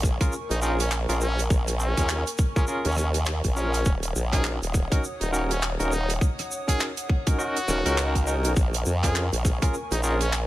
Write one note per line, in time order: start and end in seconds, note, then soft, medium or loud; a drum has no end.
0.00 0.18 A#1 medium
0.00 3.82 A#4 medium
0.00 3.82 G#5 medium
0.00 3.82 C#6 medium
0.00 kick loud
0.00 cross-stick soft
0.00 closed hi-hat medium
0.04 shaker medium
0.21 0.33 C#4 medium
0.21 0.33 F4 medium
0.21 0.33 G#4 medium
0.21 0.33 A#4 loud
0.21 kick loud
0.21 closed hi-hat medium
0.21 shaker soft
0.32 shaker medium
0.50 1.06 A#1 loud
0.50 0.58 D#4 medium
0.50 closed hi-hat medium
0.50 shaker soft
0.62 0.80 C#4 loud
0.62 0.73 D#4 medium
0.62 0.80 F4 medium
0.62 0.80 G#4 medium
0.62 0.80 A#4 loud
0.62 shaker medium
0.79 0.96 C#4 medium
0.79 closed hi-hat medium
0.79 shaker medium
0.91 clap loud
0.91 shaker medium
1.09 1.48 A#1 medium
1.09 1.21 C#4 loud
1.09 1.21 F4 loud
1.09 1.21 G#4 medium
1.09 1.21 A#4 loud
1.09 closed hi-hat medium
1.09 shaker soft
1.21 1.42 C#4 loud
1.21 shaker medium
1.39 closed hi-hat medium
1.39 shaker soft
1.50 1.95 A#1 medium
1.50 kick loud
1.50 shaker medium
1.67 cross-stick soft
1.67 closed hi-hat medium
1.67 shaker soft
1.80 2.27 C#4 loud
1.80 shaker medium
1.97 2.24 D#2 loud
1.97 2.20 C#4 medium
1.97 2.20 F4 medium
1.97 2.20 G#4 medium
1.97 2.20 A#4 medium
1.97 kick medium
1.97 closed hi-hat medium
1.97 shaker medium
2.09 clap loud
2.09 shaker medium
2.27 closed hi-hat medium
2.27 shaker soft
2.38 kick loud
2.38 shaker medium
2.56 2.66 C#4 medium
2.56 2.64 C#4 medium
2.56 2.66 F4 medium
2.56 2.66 G#4 medium
2.56 2.66 A#4 loud
2.56 kick loud
2.56 shaker soft
2.67 2.86 C#4 medium
2.67 2.79 C#4 medium
2.67 2.86 F4 medium
2.67 2.86 G#4 medium
2.67 2.86 A#4 medium
2.67 shaker medium
2.85 3.41 D#2 loud
2.85 2.93 C#4 medium
2.85 closed hi-hat medium
2.85 shaker soft
2.88 shaker soft
2.91 shaker soft
2.94 cross-stick medium
2.94 shaker soft
2.98 3.09 C#4 medium
2.98 shaker medium
3.14 closed hi-hat medium
3.14 shaker medium
3.26 clap loud
3.26 shaker medium
3.44 3.84 A#1 loud
3.44 kick medium
3.44 closed hi-hat medium
3.44 shaker soft
3.56 3.93 C#4 loud
3.56 3.81 C#4 medium
3.56 3.81 F4 medium
3.56 3.81 G#4 medium
3.56 3.81 A#4 loud
3.56 shaker medium
3.74 closed hi-hat medium
3.74 shaker soft
3.85 4.13 D#1 loud
3.85 8.52 C#5 medium
3.85 8.53 F#5 medium
3.85 8.53 D#6 medium
3.85 kick loud
3.85 shaker medium
4.03 closed hi-hat medium
4.03 shaker soft
4.15 4.59 A#1 medium
4.15 shaker medium
4.33 4.55 C#4 medium
4.33 4.55 D#4 medium
4.33 4.55 F#4 medium
4.33 4.49 G#4 loud
4.33 4.55 A#4 loud
4.33 kick medium
4.33 clap soft
4.33 closed hi-hat medium
4.44 clap loud
4.44 shaker medium
4.62 4.89 D#1 loud
4.62 closed hi-hat medium
4.62 shaker soft
4.74 kick loud
4.74 cross-stick soft
4.74 shaker medium
4.91 5.03 C#4 loud
4.91 5.03 D#4 medium
4.91 5.03 F#4 medium
4.91 5.03 A#4 loud
4.91 kick loud
4.91 closed hi-hat medium
4.91 shaker soft
5.04 shaker medium
5.21 5.77 D#1 loud
5.21 5.29 D#4 medium
5.21 closed hi-hat medium
5.21 shaker soft
5.32 5.50 C#4 loud
5.32 5.50 D#4 medium
5.32 5.44 D#4 medium
5.32 5.50 F#4 medium
5.32 5.50 A#4 loud
5.32 shaker medium
5.50 5.67 C#4 loud
5.50 closed hi-hat medium
5.50 shaker medium
5.62 clap loud
5.62 shaker medium
5.79 6.19 D#1 loud
5.79 5.92 C#4 loud
5.79 5.92 D#4 medium
5.79 5.92 F#4 medium
5.79 5.92 A#4 loud
5.79 closed hi-hat medium
5.79 shaker soft
5.91 6.12 D#4 loud
5.91 shaker medium
6.09 closed hi-hat medium
6.09 shaker soft
6.21 kick loud
6.21 shaker medium
6.39 cross-stick soft
6.39 closed hi-hat medium
6.51 shaker soft
6.51 shaker loud
6.68 6.90 C#4 medium
6.68 6.90 D#4 medium
6.68 6.90 F#4 medium
6.68 6.84 G#4 loud
6.68 6.90 A#4 medium
6.68 kick medium
6.68 closed hi-hat medium
6.68 shaker medium
6.80 clap loud
6.80 shaker medium
6.97 closed hi-hat medium
6.97 shaker soft
7.09 kick loud
7.27 7.37 C#4 medium
7.27 7.37 D#4 medium
7.27 7.37 F#4 medium
7.27 7.37 A#4 loud
7.27 kick loud
7.27 closed hi-hat medium
7.27 shaker soft
7.39 7.56 C#4 medium
7.39 7.56 D#4 medium
7.39 7.56 F#4 medium
7.39 8.22 F#4 loud
7.39 7.56 A#4 medium
7.39 shaker medium
7.57 closed hi-hat medium
7.57 shaker soft
7.68 7.83 D#1 medium
7.68 7.83 C#4 medium
7.68 7.83 D#4 medium
7.68 7.83 F#4 medium
7.68 7.83 A#4 medium
7.68 cross-stick medium
7.68 shaker loud
7.85 8.34 C#2 loud
7.85 8.24 C#4 medium
7.85 8.24 D#4 medium
7.85 8.24 F#4 medium
7.85 8.24 A#4 loud
7.85 closed hi-hat medium
7.85 shaker medium
7.98 clap loud
7.98 shaker medium
8.15 kick medium
8.15 closed hi-hat medium
8.15 shaker soft
8.27 8.52 C#4 medium
8.27 8.52 D#4 medium
8.27 8.52 F#4 medium
8.27 8.52 A#4 loud
8.27 shaker medium
8.34 8.54 C2 loud
8.44 closed hi-hat medium
8.44 shaker medium
8.56 8.84 A#1 loud
8.56 10.47 A#4 medium
8.56 10.47 G#5 medium
8.56 10.47 C#6 medium
8.56 kick loud
8.56 shaker medium
8.74 closed hi-hat medium
8.74 shaker soft
8.85 9.30 F2 loud
8.85 shaker medium
9.03 9.26 C#4 medium
9.03 9.26 F4 medium
9.03 9.26 G#4 medium
9.03 9.20 G#4 medium
9.03 9.26 A#4 loud
9.03 kick medium
9.03 clap soft
9.03 closed hi-hat medium
9.03 shaker medium
9.15 clap loud
9.15 shaker medium
9.32 9.59 A#1 medium
9.32 closed hi-hat medium
9.32 shaker soft
9.45 kick loud
9.45 cross-stick soft
9.45 shaker loud
9.62 9.74 C#4 loud
9.62 9.74 F4 medium
9.62 9.74 G#4 medium
9.62 9.74 A#4 loud
9.62 kick loud
9.62 closed hi-hat medium
9.62 shaker soft
9.74 shaker medium
9.91 10.47 A#1 loud
9.91 9.99 D#4 medium
9.91 closed hi-hat medium
9.91 shaker soft
10.03 10.21 C#4 loud
10.03 10.15 D#4 medium
10.03 10.21 F4 loud
10.03 10.21 G#4 loud
10.03 10.21 A#4 loud
10.03 shaker medium
10.20 10.37 C#4 loud
10.20 closed hi-hat medium
10.20 shaker medium
10.33 clap loud
10.33 shaker medium